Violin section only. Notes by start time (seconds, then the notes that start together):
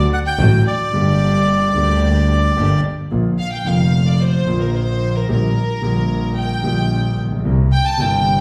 0.13 F#5
0.26 G5
0.67 D5
3.38 F5
3.52 G5
3.67 F5
4.07 D5
4.21 C5
4.61 A#4
4.75 C5
5.16 A#4
5.29 A#4
6.38 G5
7.72 G5
7.86 A5
8.00 G5